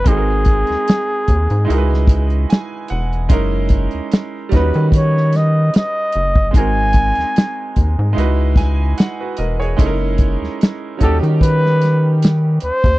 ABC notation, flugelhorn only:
X:1
M:4/4
L:1/8
Q:"Swing 16ths" 1/4=74
K:C#dor
V:1 name="Flugelhorn"
G6 z2 | z3 B c d d2 | g4 z4 | z3 =A B2 z ^B |]